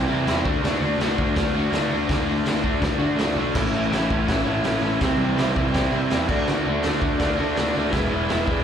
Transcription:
0.07 C3 E3 G3 C4 E4
0.12 C3
0.24 E2 E3 G3 C4, open hi-hat
0.28 E4, snare
0.44 D2 A3 D4 F#4, kick
0.49 D3
0.62 D2 D3 A3 D4, snare, open hi-hat
0.66 F#4
0.81 D2 D4 F#4
0.85 A3
0.98 D2 D3 A3 D4, snare, open hi-hat
1.02 F#4
1.18 D2 D4 F#4, kick
1.22 A3
1.35 D2 D3 A3 D4 F#4, kick, snare, open hi-hat
1.51 D2 D4 F#4
1.55 D3 A3
1.71 D2 D3 A3 D4, snare, open hi-hat
1.75 F#4
1.89 D2 D4 F#4
1.94 A3
2.08 D2 D3 A3 D4, kick, snare, open hi-hat
2.13 F#4
2.25 D2 F#4
2.29 A3 D4
2.44 D2 D3 A3 D4, snare, open hi-hat
2.48 F#4
2.61 D2 A3 D4 F#4, kick
2.80 D2 D3 A3 D4, kick, snare, open hi-hat
2.84 F#4
2.98 D3 A3 D4 F#4
3.02 D3
3.16 D2 D3 A3 D4 F#4, snare, open hi-hat
3.35 B1 D4 F#4
3.40 A3
3.54 A1 A2 E3 A3 C#4 A4 C#5 E5, kick, snare, crash
3.59 E4
3.72 A1 E4 A4
3.76 A3 C#4 C#5 E5
3.91 A1 A2 E3 A3 C#4 A4, snare, open hi-hat
3.95 E4 C#5 E5
4.09 A1 C#4 E4 A4 C#5 E5, kick
4.14 A3
4.26 A1 E3 A3 C#4 A4 C#5 F#5, kick, snare, open hi-hat
4.31 E4
4.44 A1 A3 C#4 E4 A4 C#5 F#5
4.48 A2 E3
4.62 A1 E3 A3 C#4 A4 C#5, snare, open hi-hat
4.67 E4 F#5
4.81 A1 C#4 E4 A4 C#5 E5
4.86 A3
5.00 C2 C3 E3 G3 C4 E4 G4 C5 E5, kick, snare, open hi-hat
5.16 C2 E4 G4 C5 D5
5.21 G3 C4
5.35 C2 C3 E3 G3 G4 C5 E5, open hi-hat
5.39 C4 E4, snare
5.54 C2 G3 C4 E4 G4 C5 E5, kick
5.72 C2 E3 G3 C4 G4 C5 D5, kick, snare, open hi-hat
5.77 E4
5.91 C3 E3 G3 C4 E4 G4 C5 E5
5.95 C3
6.09 E2 E3 G3 C4 G4 C5 D5 E5, snare, open hi-hat
6.13 E4
6.27 D2 D4 F#4 A4 D5 G#5, kick, crash
6.31 D3 A3
6.46 D2 D3 A3 D4, snare
6.51 F#4
6.63 D2 D4 F#4 A4 B4
6.69 A3
6.82 D3 A3 D4 F#4 A4 E5, snare, open hi-hat
6.86 D2 F#4
6.99 D2 D4 F#4 A4 D5, kick
7.04 A3
7.17 D2 D3 A3 D4 F#4 A4 D5, kick, snare, open hi-hat
7.22 F#4
7.34 D4 F#4 A4 D5
7.39 D2 D3 A3
7.53 D3 A3 F#4 A4 B4, open hi-hat
7.57 D2 D4 F#4, snare
7.69 F#4 A4 D5
7.74 D2 D4 F#4
7.79 A3
7.90 E1 E3 G#3 B3 G#4 B4 E5, kick, snare, open hi-hat
7.95 E4
8.09 E1 B3 E4 G#4 B4 E5
8.13 G#3
8.27 E1 E3 G#3 B3 G#4 B4 E5, snare, open hi-hat
8.31 E4
8.46 E1 B3 E4 G#4 B4, kick
8.51 G#3 D5

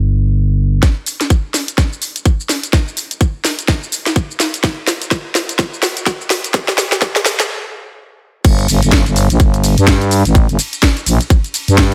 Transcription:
Already playing: G1
0.83 kick, snare, closed hi-hat, shaker
1.06 open hi-hat, shaker
1.21 snare, closed hi-hat, shaker
1.30 kick, closed hi-hat, shaker
1.54 snare, open hi-hat, shaker
1.68 closed hi-hat, shaker
1.78 kick, snare, closed hi-hat, shaker
1.93 shaker
2.02 open hi-hat, shaker
2.16 closed hi-hat, shaker
2.25 kick, closed hi-hat, shaker
2.40 shaker
2.49 snare, open hi-hat, shaker
2.63 closed hi-hat, shaker
2.73 kick, snare, closed hi-hat, shaker
2.88 shaker
2.97 open hi-hat, shaker
3.11 closed hi-hat, shaker
3.21 kick, closed hi-hat, shaker
3.45 snare, open hi-hat, shaker
3.59 closed hi-hat, shaker
3.68 kick, snare, closed hi-hat, shaker
3.83 shaker
3.92 open hi-hat, shaker
4.06 snare, closed hi-hat, shaker
4.16 kick, closed hi-hat, shaker
4.31 shaker
4.40 snare, open hi-hat, shaker
4.54 closed hi-hat, shaker
4.64 kick, snare, closed hi-hat, shaker
4.87 snare, open hi-hat, shaker
5.02 closed hi-hat, shaker
5.11 kick, snare, closed hi-hat, shaker
5.35 snare, open hi-hat, shaker
5.49 closed hi-hat, shaker
5.59 kick, snare, closed hi-hat, shaker
5.74 shaker
5.83 snare, open hi-hat, shaker
5.97 closed hi-hat, shaker
6.06 kick, snare, closed hi-hat, shaker
6.21 shaker
6.30 snare, open hi-hat, shaker
6.44 closed hi-hat, shaker
6.54 kick, snare, closed hi-hat, shaker
6.68 snare, shaker
6.78 snare, open hi-hat, shaker
6.92 snare, closed hi-hat, shaker
7.02 kick, snare, closed hi-hat, shaker
7.16 snare
7.25 snare, open hi-hat, shaker
7.40 snare, closed hi-hat, shaker
8.45 G1, kick, closed hi-hat, crash, shaker
8.59 closed hi-hat, shaker
8.68 G1, open hi-hat, ride, shaker
8.83 G1, closed hi-hat, shaker
8.92 G1, kick, snare, closed hi-hat, shaker
9.06 G1, closed hi-hat, shaker
9.16 open hi-hat, ride, shaker
9.30 A#1, closed hi-hat, shaker
9.40 G1, kick, closed hi-hat, shaker
9.54 closed hi-hat, shaker
9.64 open hi-hat, ride, shaker
9.78 G2, closed hi-hat, shaker
9.87 kick, snare, closed hi-hat, shaker
10.02 closed hi-hat, shaker
10.11 open hi-hat, ride, shaker
10.25 A1, closed hi-hat, shaker
10.35 kick, closed hi-hat, shaker
10.49 G1, closed hi-hat, shaker
10.59 open hi-hat, ride, shaker
10.73 closed hi-hat, shaker
10.83 kick, snare, closed hi-hat, shaker
10.97 closed hi-hat, shaker
11.06 A#1, open hi-hat, ride, shaker
11.21 closed hi-hat, shaker
11.30 kick, closed hi-hat, shaker
11.44 closed hi-hat, shaker
11.54 open hi-hat, ride, shaker
11.68 G2, closed hi-hat, shaker
11.78 kick, snare, closed hi-hat, shaker

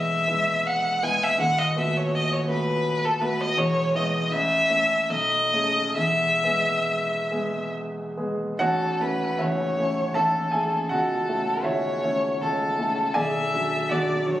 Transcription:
Already playing: E1 E2 G#3 B3 E4 E5
0.28 G#3 B3 E4
0.67 F#5
1.03 G#3 B3 E4 G#5
1.23 E5
1.39 D#1 D#2 F#5
1.59 D#5
1.76 A3 B3 F#4 E5
1.97 C#5
2.15 D#5
2.33 C#5
2.48 A3 B3 F#4 B4
3.05 A4
3.21 A3 B3 F#4 B4
3.41 D#5
3.57 E1 E2 C#5
3.94 G#3 B3 E4 D#5
4.31 A1 E5
4.70 A3 C#4 E4
5.10 B1 D#5
5.53 A3 C#4 G#4
5.96 E1 E2 E5
6.44 G#3 B3 G#4
7.31 G#3 B3 G#4
8.17 G#3 B3 G#4
8.59 A0 A1 F#4 A4 C#5 F#5
9.00 A3 C#4 E4 B4
9.39 A0 A1 E4 C#5 E5
9.78 A3 C#4 E4
10.14 A0 A1 A4 E5 A5
10.51 A3 C#4 E4 G#4 G#5
10.89 C#1 C#2 F#4 A4 F#5
11.28 A3 C#4 E4
11.64 C#1 C#2 E4 C#5 E5
12.04 A3 C#4 E4
12.41 C#1 C#2 A4
12.78 A3 C#4 E4
13.14 B0 B1 G#4 D5 E5 G#5
13.54 F#3 D4
13.89 B0 B1 F#4 D5 F#5
14.26 F#3 D4 C#5

